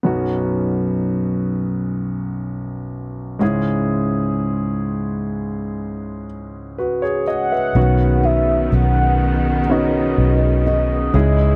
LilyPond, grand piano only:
\new Staff \with { instrumentName = "Grand piano" } { \time 4/4 \key b \mixolydian \tempo 4 = 62 << { r1 | r2. <fis' b'>16 <gis' cis''>16 <gis' dis''>16 <b' e''>16~ | <b' e''>16 r2. r8. | } \\ { <b,, fis, b cis' dis' fis'>2.~ <b,, fis, b cis' dis' fis'>8 <cis, gis, gis cis' e' gis'>8~ | <cis, gis, gis cis' e' gis'>2.~ <cis, gis, gis cis' e' gis'>8 r8 | <dis b cis' fis'>2 <b cis' dis' fis'>4. <gis, gis cis' e' gis'>8 | } >> }